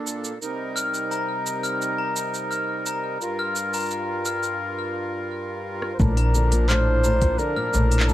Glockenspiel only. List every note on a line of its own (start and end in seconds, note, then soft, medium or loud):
0.76 0.86 F6 medium
1.11 1.21 A#5 medium
1.63 1.74 F6 medium
1.98 2.09 A#5 medium
2.51 2.61 F6 medium
2.86 2.96 A#5 medium
3.39 3.49 F6 medium
3.74 3.84 A#5 medium
4.26 4.36 F6 medium
6.17 6.27 A#5 medium
6.69 6.79 F6 loud
7.04 7.14 A#5 medium
7.56 7.67 F6 loud
7.91 8.02 A#5 medium